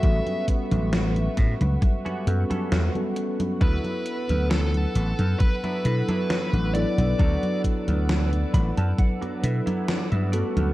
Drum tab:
HH |xxxxxxxxxxxxxxxx|xxxxxxxxxxxxxxxx|xxxxxxxxxxxxxxxx|
SD |----o-o-----o---|----o-------o---|----o-o-----o---|
CG |oo-ooo-ooo-ooo-o|oo-ooo-ooo-ooo-o|oo-ooo-ooo-ooo-o|
BD |o-o---o-o-------|o-------o-------|o-o---o-o-------|